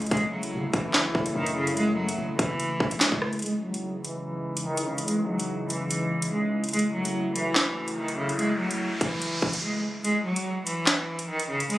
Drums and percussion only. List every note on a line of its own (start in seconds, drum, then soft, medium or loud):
0.02 closed hi-hat soft
0.06 closed hi-hat medium
0.11 kick loud
0.11 closed hi-hat medium
0.17 closed hi-hat medium
0.43 closed hi-hat medium
0.74 kick loud
0.74 closed hi-hat medium
0.94 snare loud
0.94 clap medium
1.15 kick loud
1.26 closed hi-hat medium
1.46 closed hi-hat medium
1.67 closed hi-hat medium
1.77 closed hi-hat medium
2.09 closed hi-hat medium
2.39 kick loud
2.39 closed hi-hat medium
2.60 closed hi-hat medium
2.80 kick loud
2.91 closed hi-hat medium
3.01 snare loud
3.01 clap loud
3.12 kick medium
3.22 cross-stick loud
3.33 closed hi-hat soft
3.39 closed hi-hat medium
3.42 closed hi-hat medium
3.46 closed hi-hat medium
3.74 closed hi-hat medium
4.04 closed hi-hat medium
4.57 closed hi-hat medium
4.77 closed hi-hat medium
4.98 closed hi-hat medium
5.08 closed hi-hat medium
5.40 closed hi-hat medium
5.70 closed hi-hat medium
5.91 closed hi-hat medium
6.22 closed hi-hat medium
6.64 closed hi-hat soft
6.69 closed hi-hat medium
6.73 closed hi-hat medium
6.79 closed hi-hat medium
7.05 closed hi-hat medium
7.36 closed hi-hat medium
7.56 snare loud
7.56 clap medium
7.88 closed hi-hat medium
8.08 closed hi-hat medium
8.29 closed hi-hat medium
8.39 closed hi-hat medium
8.71 closed hi-hat medium
9.01 kick medium
9.01 closed hi-hat medium
9.22 closed hi-hat medium
9.42 kick loud
9.53 closed hi-hat medium
10.05 closed hi-hat medium
10.36 closed hi-hat medium
10.67 closed hi-hat medium
10.87 snare loud
10.87 clap medium
11.19 closed hi-hat medium
11.39 closed hi-hat medium
11.60 closed hi-hat medium
11.70 closed hi-hat medium